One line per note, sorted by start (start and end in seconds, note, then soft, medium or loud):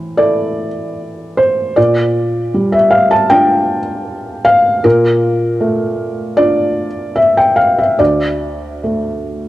0.00 1.73 A2 soft
0.00 0.66 E3 soft
0.00 0.17 C5 medium
0.17 1.73 E4 soft
0.17 1.73 A4 soft
0.17 1.37 D5 medium
1.37 1.77 C5 medium
1.76 4.81 A#2 soft
1.76 2.74 D5 medium
2.54 3.77 G3 soft
2.72 2.93 E5 medium
2.91 3.11 F5 medium
3.11 3.31 A5 medium
3.30 4.80 D4 soft
3.30 4.80 F4 soft
3.30 4.45 G5 medium
4.45 4.84 F5 medium
4.84 7.95 A#2 medium
4.84 6.38 A#4 medium
5.61 6.86 A3 soft
6.37 7.95 D4 soft
6.37 7.95 F4 soft
6.37 7.17 D5 medium
7.16 7.37 E5 medium
7.37 7.58 G5 medium
7.56 7.78 F5 medium
7.78 7.99 E5 medium
7.99 9.48 D2 soft
7.99 9.48 D5 medium
8.84 9.48 A3 soft